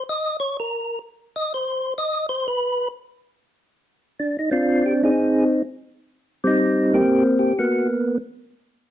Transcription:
0, 0, Header, 1, 2, 480
1, 0, Start_track
1, 0, Tempo, 318640
1, 72, Time_signature, 4, 2, 24, 8
1, 13418, End_track
2, 0, Start_track
2, 0, Title_t, "Tonewheel organ"
2, 0, Program_c, 0, 16
2, 140, Note_on_c, 0, 75, 111
2, 554, Note_off_c, 0, 75, 0
2, 600, Note_on_c, 0, 73, 105
2, 859, Note_off_c, 0, 73, 0
2, 899, Note_on_c, 0, 70, 75
2, 1492, Note_off_c, 0, 70, 0
2, 2047, Note_on_c, 0, 75, 110
2, 2300, Note_off_c, 0, 75, 0
2, 2320, Note_on_c, 0, 72, 96
2, 2920, Note_off_c, 0, 72, 0
2, 2983, Note_on_c, 0, 75, 118
2, 3410, Note_off_c, 0, 75, 0
2, 3451, Note_on_c, 0, 72, 101
2, 3720, Note_off_c, 0, 72, 0
2, 3731, Note_on_c, 0, 71, 108
2, 4343, Note_off_c, 0, 71, 0
2, 6319, Note_on_c, 0, 62, 72
2, 6582, Note_off_c, 0, 62, 0
2, 6611, Note_on_c, 0, 63, 74
2, 6777, Note_off_c, 0, 63, 0
2, 6797, Note_on_c, 0, 62, 66
2, 6801, Note_on_c, 0, 60, 63
2, 6816, Note_on_c, 0, 65, 86
2, 7292, Note_off_c, 0, 65, 0
2, 7322, Note_on_c, 0, 67, 98
2, 7440, Note_off_c, 0, 67, 0
2, 7571, Note_off_c, 0, 60, 0
2, 7582, Note_on_c, 0, 63, 67
2, 7589, Note_on_c, 0, 60, 70
2, 7603, Note_on_c, 0, 68, 100
2, 7689, Note_off_c, 0, 62, 0
2, 8202, Note_off_c, 0, 68, 0
2, 8469, Note_off_c, 0, 63, 0
2, 8472, Note_off_c, 0, 60, 0
2, 9699, Note_on_c, 0, 55, 61
2, 9700, Note_on_c, 0, 60, 62
2, 9750, Note_on_c, 0, 63, 89
2, 10438, Note_off_c, 0, 60, 0
2, 10448, Note_on_c, 0, 58, 74
2, 10456, Note_on_c, 0, 60, 71
2, 10463, Note_on_c, 0, 67, 118
2, 10503, Note_off_c, 0, 63, 0
2, 10584, Note_off_c, 0, 55, 0
2, 10899, Note_off_c, 0, 67, 0
2, 11134, Note_on_c, 0, 67, 95
2, 11345, Note_off_c, 0, 58, 0
2, 11349, Note_off_c, 0, 60, 0
2, 11422, Note_off_c, 0, 67, 0
2, 11430, Note_on_c, 0, 66, 90
2, 11435, Note_on_c, 0, 58, 63
2, 11439, Note_on_c, 0, 59, 61
2, 11863, Note_off_c, 0, 66, 0
2, 12319, Note_off_c, 0, 58, 0
2, 12321, Note_off_c, 0, 59, 0
2, 13418, End_track
0, 0, End_of_file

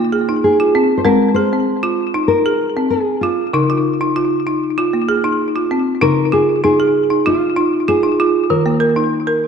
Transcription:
0, 0, Header, 1, 3, 480
1, 0, Start_track
1, 0, Tempo, 620476
1, 811, Time_signature, 4, 2, 24, 8
1, 7330, End_track
2, 0, Start_track
2, 0, Title_t, "Nylon-string guitar"
2, 0, Program_c, 0, 24
2, 341, Note_on_c, 0, 68, 79
2, 751, Note_off_c, 0, 68, 0
2, 754, Note_on_c, 0, 72, 68
2, 807, Note_off_c, 0, 72, 0
2, 810, Note_on_c, 0, 70, 92
2, 1037, Note_off_c, 0, 70, 0
2, 1040, Note_on_c, 0, 72, 96
2, 1760, Note_off_c, 0, 72, 0
2, 1763, Note_on_c, 0, 70, 93
2, 2243, Note_off_c, 0, 70, 0
2, 2246, Note_on_c, 0, 68, 82
2, 2484, Note_on_c, 0, 65, 68
2, 2497, Note_off_c, 0, 68, 0
2, 3179, Note_off_c, 0, 65, 0
2, 4660, Note_on_c, 0, 70, 99
2, 4894, Note_off_c, 0, 70, 0
2, 4898, Note_on_c, 0, 68, 89
2, 5130, Note_off_c, 0, 68, 0
2, 5139, Note_on_c, 0, 68, 88
2, 5624, Note_on_c, 0, 65, 80
2, 5630, Note_off_c, 0, 68, 0
2, 6099, Note_on_c, 0, 68, 86
2, 6112, Note_off_c, 0, 65, 0
2, 6571, Note_off_c, 0, 68, 0
2, 6574, Note_on_c, 0, 70, 85
2, 7021, Note_off_c, 0, 70, 0
2, 7330, End_track
3, 0, Start_track
3, 0, Title_t, "Marimba"
3, 0, Program_c, 1, 12
3, 0, Note_on_c, 1, 49, 81
3, 0, Note_on_c, 1, 58, 62
3, 94, Note_off_c, 1, 58, 0
3, 96, Note_on_c, 1, 68, 67
3, 214, Note_off_c, 1, 68, 0
3, 222, Note_on_c, 1, 63, 64
3, 457, Note_off_c, 1, 63, 0
3, 463, Note_on_c, 1, 65, 68
3, 576, Note_off_c, 1, 65, 0
3, 580, Note_on_c, 1, 60, 70
3, 778, Note_off_c, 1, 49, 0
3, 808, Note_off_c, 1, 60, 0
3, 809, Note_on_c, 1, 56, 75
3, 817, Note_on_c, 1, 60, 80
3, 1053, Note_on_c, 1, 68, 67
3, 1054, Note_off_c, 1, 60, 0
3, 1173, Note_off_c, 1, 68, 0
3, 1183, Note_on_c, 1, 60, 58
3, 1416, Note_on_c, 1, 65, 69
3, 1418, Note_off_c, 1, 60, 0
3, 1654, Note_off_c, 1, 65, 0
3, 1658, Note_on_c, 1, 63, 65
3, 1896, Note_off_c, 1, 63, 0
3, 1901, Note_on_c, 1, 68, 62
3, 2137, Note_off_c, 1, 68, 0
3, 2140, Note_on_c, 1, 60, 63
3, 2377, Note_off_c, 1, 60, 0
3, 2500, Note_on_c, 1, 65, 65
3, 2702, Note_off_c, 1, 56, 0
3, 2734, Note_on_c, 1, 49, 74
3, 2737, Note_off_c, 1, 65, 0
3, 2738, Note_on_c, 1, 63, 77
3, 2857, Note_off_c, 1, 63, 0
3, 2860, Note_on_c, 1, 65, 60
3, 3098, Note_off_c, 1, 65, 0
3, 3101, Note_on_c, 1, 63, 62
3, 3218, Note_off_c, 1, 63, 0
3, 3218, Note_on_c, 1, 65, 71
3, 3454, Note_on_c, 1, 63, 60
3, 3456, Note_off_c, 1, 65, 0
3, 3695, Note_off_c, 1, 63, 0
3, 3696, Note_on_c, 1, 65, 77
3, 3816, Note_off_c, 1, 65, 0
3, 3817, Note_on_c, 1, 58, 55
3, 3934, Note_on_c, 1, 68, 68
3, 3936, Note_off_c, 1, 58, 0
3, 4055, Note_off_c, 1, 68, 0
3, 4055, Note_on_c, 1, 63, 58
3, 4295, Note_off_c, 1, 63, 0
3, 4298, Note_on_c, 1, 65, 64
3, 4416, Note_off_c, 1, 65, 0
3, 4418, Note_on_c, 1, 60, 64
3, 4624, Note_off_c, 1, 49, 0
3, 4653, Note_on_c, 1, 63, 82
3, 4655, Note_on_c, 1, 49, 76
3, 4656, Note_off_c, 1, 60, 0
3, 4891, Note_on_c, 1, 65, 71
3, 4894, Note_off_c, 1, 63, 0
3, 5133, Note_off_c, 1, 65, 0
3, 5135, Note_on_c, 1, 63, 77
3, 5255, Note_off_c, 1, 63, 0
3, 5258, Note_on_c, 1, 68, 71
3, 5495, Note_on_c, 1, 63, 67
3, 5496, Note_off_c, 1, 68, 0
3, 5614, Note_off_c, 1, 63, 0
3, 5615, Note_on_c, 1, 65, 82
3, 5853, Note_on_c, 1, 63, 73
3, 5854, Note_off_c, 1, 65, 0
3, 6093, Note_off_c, 1, 63, 0
3, 6098, Note_on_c, 1, 65, 78
3, 6214, Note_on_c, 1, 63, 66
3, 6216, Note_off_c, 1, 65, 0
3, 6333, Note_off_c, 1, 63, 0
3, 6342, Note_on_c, 1, 65, 72
3, 6541, Note_off_c, 1, 49, 0
3, 6577, Note_off_c, 1, 65, 0
3, 6577, Note_on_c, 1, 51, 78
3, 6697, Note_on_c, 1, 58, 67
3, 6809, Note_on_c, 1, 70, 78
3, 6814, Note_off_c, 1, 58, 0
3, 6931, Note_off_c, 1, 70, 0
3, 6933, Note_on_c, 1, 63, 65
3, 7172, Note_off_c, 1, 63, 0
3, 7172, Note_on_c, 1, 70, 70
3, 7330, Note_off_c, 1, 51, 0
3, 7330, Note_off_c, 1, 70, 0
3, 7330, End_track
0, 0, End_of_file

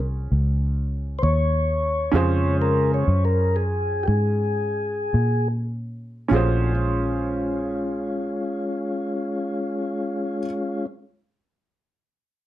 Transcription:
0, 0, Header, 1, 4, 480
1, 0, Start_track
1, 0, Key_signature, -5, "minor"
1, 0, Tempo, 607287
1, 1691, Time_signature, 12, 3, 24, 8
1, 2184, Tempo, 657174
1, 3144, Tempo, 701754
1, 3624, Tempo, 765306
1, 4584, Tempo, 816327
1, 8206, End_track
2, 0, Start_track
2, 0, Title_t, "Upright piano"
2, 0, Program_c, 0, 0
2, 0, Note_on_c, 0, 61, 57
2, 0, Note_on_c, 0, 65, 50
2, 0, Note_on_c, 0, 68, 49
2, 0, Note_on_c, 0, 72, 61
2, 1654, Note_off_c, 0, 61, 0
2, 1659, Note_off_c, 0, 65, 0
2, 1663, Note_off_c, 0, 68, 0
2, 1667, Note_off_c, 0, 72, 0
2, 1672, Note_on_c, 0, 61, 69
2, 1684, Note_on_c, 0, 65, 65
2, 1694, Note_on_c, 0, 68, 60
2, 1706, Note_on_c, 0, 72, 76
2, 4552, Note_off_c, 0, 61, 0
2, 4557, Note_off_c, 0, 65, 0
2, 4561, Note_off_c, 0, 68, 0
2, 4566, Note_off_c, 0, 72, 0
2, 4568, Note_on_c, 0, 61, 69
2, 4583, Note_on_c, 0, 65, 65
2, 4595, Note_on_c, 0, 68, 64
2, 4609, Note_on_c, 0, 72, 74
2, 6983, Note_off_c, 0, 61, 0
2, 6997, Note_off_c, 0, 65, 0
2, 7009, Note_off_c, 0, 68, 0
2, 7024, Note_off_c, 0, 72, 0
2, 8206, End_track
3, 0, Start_track
3, 0, Title_t, "Tonewheel organ"
3, 0, Program_c, 1, 16
3, 938, Note_on_c, 1, 72, 79
3, 967, Note_off_c, 1, 72, 0
3, 976, Note_on_c, 1, 73, 97
3, 1693, Note_on_c, 1, 56, 46
3, 1695, Note_on_c, 1, 49, 54
3, 2031, Note_off_c, 1, 73, 0
3, 2068, Note_on_c, 1, 70, 93
3, 2298, Note_off_c, 1, 70, 0
3, 2314, Note_on_c, 1, 73, 91
3, 2390, Note_off_c, 1, 56, 0
3, 2391, Note_off_c, 1, 49, 0
3, 2536, Note_off_c, 1, 73, 0
3, 2539, Note_on_c, 1, 70, 88
3, 2766, Note_on_c, 1, 68, 94
3, 2770, Note_off_c, 1, 70, 0
3, 3112, Note_on_c, 1, 67, 74
3, 3129, Note_off_c, 1, 68, 0
3, 3143, Note_off_c, 1, 67, 0
3, 3143, Note_on_c, 1, 68, 100
3, 4064, Note_off_c, 1, 68, 0
3, 4601, Note_on_c, 1, 57, 56
3, 4604, Note_on_c, 1, 66, 60
3, 4608, Note_on_c, 1, 61, 57
3, 4608, Note_on_c, 1, 62, 61
3, 4833, Note_off_c, 1, 57, 0
3, 4835, Note_off_c, 1, 66, 0
3, 4836, Note_off_c, 1, 62, 0
3, 4837, Note_off_c, 1, 61, 0
3, 4843, Note_on_c, 1, 65, 67
3, 4844, Note_on_c, 1, 56, 68
3, 4849, Note_on_c, 1, 61, 67
3, 7257, Note_off_c, 1, 65, 0
3, 7258, Note_off_c, 1, 56, 0
3, 7264, Note_off_c, 1, 61, 0
3, 8206, End_track
4, 0, Start_track
4, 0, Title_t, "Fingered electric bass"
4, 0, Program_c, 2, 33
4, 0, Note_on_c, 2, 36, 92
4, 239, Note_off_c, 2, 36, 0
4, 250, Note_on_c, 2, 37, 90
4, 944, Note_off_c, 2, 37, 0
4, 971, Note_on_c, 2, 39, 91
4, 1670, Note_off_c, 2, 39, 0
4, 1689, Note_on_c, 2, 41, 80
4, 2396, Note_off_c, 2, 41, 0
4, 2414, Note_on_c, 2, 42, 94
4, 3121, Note_off_c, 2, 42, 0
4, 3146, Note_on_c, 2, 44, 94
4, 3834, Note_off_c, 2, 44, 0
4, 3851, Note_on_c, 2, 46, 93
4, 4562, Note_off_c, 2, 46, 0
4, 4585, Note_on_c, 2, 34, 95
4, 7000, Note_off_c, 2, 34, 0
4, 8206, End_track
0, 0, End_of_file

